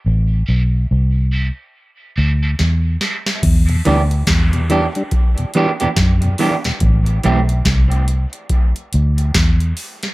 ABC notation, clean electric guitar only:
X:1
M:4/4
L:1/16
Q:"Swing 16ths" 1/4=71
K:Em
V:1 name="Clean electric guitar"
z2 [G,CEA] z3 [G,CEA] z3 [G,CEA] [G,CEA] z2 [G,CEA] z | z2 [E,B,DG] z3 [E,B,DG] z3 [E,B,DG] [E,B,DG] z2 [E,B,DG] z | z2 [E,A,CG] z12 z |]